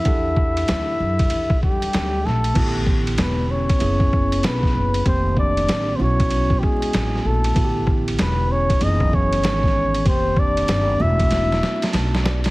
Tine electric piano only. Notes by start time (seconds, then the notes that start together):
0.04 D4 G4 A4 F#5
2.54 D3 B3 E4 F#4
2.63 G4
3.79 B3 C#4 E4 G#4
5.05 D#3 A#3 C4 G4
5.98 B3 C#4 E4 F#4
7.55 D3 B3 E4 F#4
7.64 G4
8.80 E3 B3 C#4 G#4
10.05 D#3 A#3 C4 G4
10.98 A3 B3 D4 F#4
11.93 A5
12.24 D5